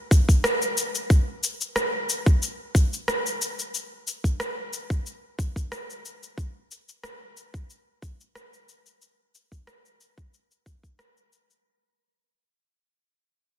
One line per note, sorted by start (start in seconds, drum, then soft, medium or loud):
0.11 kick loud
0.11 cabasa medium
0.29 kick medium
0.29 cabasa soft
0.44 cross-stick loud
0.44 cabasa soft
0.62 cabasa soft
0.78 cabasa medium
0.95 cabasa soft
1.10 kick loud
1.10 cabasa soft
1.44 cabasa medium
1.61 cabasa soft
1.76 cross-stick medium
1.76 cabasa soft
2.10 cabasa medium
2.26 kick loud
2.26 cabasa soft
2.43 cabasa soft
2.75 kick loud
2.75 cabasa medium
2.93 cabasa soft
3.08 cross-stick medium
3.08 cabasa soft
3.26 cabasa soft
3.42 cabasa medium
3.59 cabasa soft
3.75 cabasa soft
4.07 cabasa medium
4.24 kick medium
4.24 cabasa soft
4.40 cross-stick medium
4.40 cabasa soft
4.73 cabasa medium
4.90 kick medium
4.90 cabasa soft
5.06 cabasa soft
5.39 kick medium
5.39 cabasa medium
5.56 kick medium
5.56 cabasa soft
5.72 cross-stick medium
5.72 cabasa soft
5.90 cabasa soft
6.05 cabasa medium
6.23 cabasa soft
6.38 kick loud
6.38 cabasa soft
6.71 cabasa medium
6.89 cabasa soft
7.04 cross-stick medium
7.04 cabasa soft
7.37 cabasa medium
7.54 kick medium
7.54 cabasa soft
7.70 cabasa soft
8.02 kick medium
8.02 cabasa medium
8.21 cabasa soft
8.35 cross-stick medium
8.35 cabasa soft
8.54 cabasa soft
8.69 cabasa medium
8.86 cabasa soft
9.02 cabasa soft
9.35 cabasa medium
9.52 kick medium
9.52 cabasa soft
9.67 cross-stick medium
9.67 cabasa soft
9.85 cabasa soft
10.01 cabasa medium
10.18 kick medium
10.18 cabasa soft
10.34 cabasa soft
10.51 cabasa soft
10.66 kick medium
10.66 cabasa medium
10.83 kick medium
10.83 cabasa soft
10.99 cross-stick medium
10.99 cabasa soft
11.17 cabasa soft
11.33 cabasa medium
11.50 cabasa soft